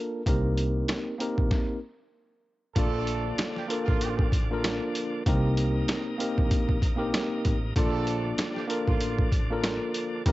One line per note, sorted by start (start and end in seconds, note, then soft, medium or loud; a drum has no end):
0.00 0.21 A#3 medium
0.00 0.21 D4 medium
0.00 0.21 F4 medium
0.00 0.22 A4 medium
0.00 0.22 A#4 loud
0.26 0.80 C2 loud
0.26 1.13 A#3 medium
0.26 1.14 C4 medium
0.26 1.14 D#4 medium
0.26 1.14 G4 medium
0.26 1.15 A#4 loud
0.26 kick loud
0.26 closed hi-hat medium
0.57 closed hi-hat medium
0.88 snare loud
0.88 snare medium
0.88 closed hi-hat medium
1.18 1.77 A#3 medium
1.18 1.78 C4 medium
1.18 1.78 D#4 medium
1.18 1.78 G4 medium
1.18 1.79 A#4 loud
1.18 closed hi-hat medium
1.38 1.51 A#1 medium
1.38 kick loud
1.51 kick loud
1.51 snare medium
2.75 3.30 A#1 loud
2.75 5.23 D3 medium
2.75 5.23 F3 medium
2.75 3.35 A3 loud
2.75 3.63 A#3 medium
2.75 5.23 D4 medium
2.75 3.64 D4 medium
2.75 3.64 F4 medium
2.75 3.35 A4 loud
2.75 3.64 A4 medium
2.75 3.65 D5 loud
2.75 kick loud
2.75 closed hi-hat medium
3.07 closed hi-hat medium
3.38 snare loud
3.38 snare medium
3.38 closed hi-hat medium
3.55 3.66 G3 medium
3.55 3.66 G4 medium
3.55 snare soft
3.68 4.27 A#3 medium
3.68 4.27 D4 medium
3.68 4.28 F4 medium
3.68 4.28 A4 medium
3.68 4.28 A#4 loud
3.68 closed hi-hat medium
3.83 4.27 F4 loud
3.88 4.78 A1 medium
3.88 kick loud
4.01 closed hi-hat loud
4.19 kick medium
4.32 kick medium
4.32 closed hi-hat medium
4.50 5.21 A#3 medium
4.50 5.21 D4 medium
4.50 5.22 F4 medium
4.50 5.22 A4 medium
4.50 5.22 A#4 loud
4.64 snare loud
4.64 snare medium
4.64 closed hi-hat medium
4.95 closed hi-hat medium
5.26 5.80 C2 loud
5.26 7.74 C3 medium
5.26 6.13 A#3 medium
5.26 7.74 A#3 medium
5.26 6.14 C4 medium
5.26 7.74 D#4 medium
5.26 6.14 D#4 medium
5.26 6.14 G4 medium
5.26 6.15 A#4 loud
5.26 kick loud
5.26 closed hi-hat medium
5.57 closed hi-hat medium
5.88 snare loud
5.88 snare medium
5.88 closed hi-hat medium
6.18 6.77 A#3 loud
6.18 6.77 C4 medium
6.18 6.78 D#4 medium
6.18 6.78 G4 medium
6.18 6.78 A#4 loud
6.18 closed hi-hat medium
6.38 7.10 A#1 medium
6.38 kick loud
6.51 kick loud
6.51 closed hi-hat medium
6.69 kick medium
6.82 kick medium
6.82 closed hi-hat medium
6.96 7.55 A#3 medium
6.96 7.55 C4 medium
6.96 7.56 D#4 medium
6.96 7.56 G4 loud
6.96 7.56 A#4 loud
7.14 snare loud
7.14 snare medium
7.14 closed hi-hat medium
7.45 7.72 A1 medium
7.45 kick medium
7.45 closed hi-hat medium
7.76 8.30 A#1 loud
7.76 10.24 D3 medium
7.76 10.24 F3 medium
7.76 8.35 A3 loud
7.76 8.63 A#3 medium
7.76 10.24 D4 medium
7.76 8.64 D4 medium
7.76 8.64 F4 medium
7.76 8.35 A4 loud
7.76 8.64 A4 medium
7.76 8.65 D5 loud
7.76 kick loud
7.76 closed hi-hat medium
8.07 closed hi-hat medium
8.38 snare loud
8.38 snare medium
8.38 closed hi-hat medium
8.53 8.65 G3 medium
8.53 8.65 G4 medium
8.53 snare soft
8.68 9.27 A#3 medium
8.68 9.27 D4 medium
8.68 9.28 F4 medium
8.68 9.28 A4 medium
8.68 9.28 A#4 loud
8.68 closed hi-hat medium
8.87 9.77 A1 medium
8.87 9.30 F4 medium
8.87 kick loud
9.01 closed hi-hat loud
9.19 kick medium
9.32 kick medium
9.32 closed hi-hat medium
9.50 10.21 A#3 loud
9.50 10.21 D4 medium
9.50 10.21 F4 medium
9.50 10.22 A4 medium
9.50 10.22 A#4 loud
9.64 snare loud
9.64 snare medium
9.64 closed hi-hat medium
9.94 closed hi-hat medium
10.26 10.32 C2 loud
10.26 10.32 C3 medium
10.26 10.32 A#3 medium
10.26 10.32 C4 medium
10.26 10.32 D#4 medium
10.26 10.32 G4 medium
10.26 10.32 A#4 loud
10.26 kick loud
10.26 closed hi-hat medium